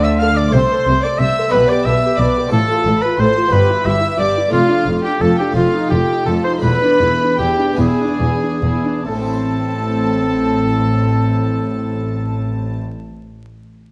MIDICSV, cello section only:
0, 0, Header, 1, 2, 480
1, 0, Start_track
1, 0, Key_signature, 0, "minor"
1, 0, Tempo, 665188
1, 386, Time_signature, 6, 3, 24, 8
1, 3270, Tempo, 703400
1, 4710, Tempo, 778210
1, 5670, Tempo, 860832
1, 8860, End_track
2, 0, Start_track
2, 0, Title_t, "Cello section"
2, 0, Program_c, 0, 48
2, 0, Note_on_c, 0, 50, 99
2, 301, Note_off_c, 0, 50, 0
2, 386, Note_on_c, 0, 48, 86
2, 444, Note_off_c, 0, 48, 0
2, 625, Note_on_c, 0, 48, 80
2, 683, Note_off_c, 0, 48, 0
2, 861, Note_on_c, 0, 48, 79
2, 918, Note_off_c, 0, 48, 0
2, 1102, Note_on_c, 0, 47, 96
2, 1160, Note_off_c, 0, 47, 0
2, 1340, Note_on_c, 0, 47, 80
2, 1398, Note_off_c, 0, 47, 0
2, 1578, Note_on_c, 0, 47, 92
2, 1636, Note_off_c, 0, 47, 0
2, 1819, Note_on_c, 0, 45, 90
2, 1877, Note_off_c, 0, 45, 0
2, 2058, Note_on_c, 0, 45, 92
2, 2115, Note_off_c, 0, 45, 0
2, 2298, Note_on_c, 0, 45, 88
2, 2356, Note_off_c, 0, 45, 0
2, 2535, Note_on_c, 0, 43, 94
2, 2593, Note_off_c, 0, 43, 0
2, 2777, Note_on_c, 0, 43, 89
2, 2835, Note_off_c, 0, 43, 0
2, 3023, Note_on_c, 0, 43, 86
2, 3081, Note_off_c, 0, 43, 0
2, 3265, Note_on_c, 0, 41, 87
2, 3320, Note_off_c, 0, 41, 0
2, 3498, Note_on_c, 0, 41, 87
2, 3553, Note_off_c, 0, 41, 0
2, 3733, Note_on_c, 0, 41, 86
2, 3787, Note_off_c, 0, 41, 0
2, 3969, Note_on_c, 0, 41, 86
2, 4024, Note_off_c, 0, 41, 0
2, 4210, Note_on_c, 0, 41, 83
2, 4264, Note_off_c, 0, 41, 0
2, 4455, Note_on_c, 0, 41, 88
2, 4510, Note_off_c, 0, 41, 0
2, 4703, Note_on_c, 0, 40, 90
2, 4753, Note_off_c, 0, 40, 0
2, 4933, Note_on_c, 0, 40, 86
2, 4982, Note_off_c, 0, 40, 0
2, 5170, Note_on_c, 0, 40, 75
2, 5219, Note_off_c, 0, 40, 0
2, 5412, Note_on_c, 0, 40, 85
2, 5462, Note_off_c, 0, 40, 0
2, 5668, Note_on_c, 0, 40, 81
2, 5713, Note_off_c, 0, 40, 0
2, 5903, Note_on_c, 0, 40, 75
2, 5947, Note_off_c, 0, 40, 0
2, 6145, Note_on_c, 0, 45, 81
2, 8222, Note_off_c, 0, 45, 0
2, 8860, End_track
0, 0, End_of_file